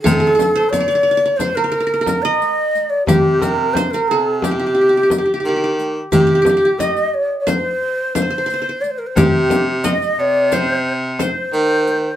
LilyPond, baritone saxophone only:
\new Staff \with { instrumentName = "Baritone saxophone" } { \clef bass \time 9/8 \tempo 4. = 59 c8 r1 | c4. c2 ees4 | c8 r1 | c4. c2 ees4 | }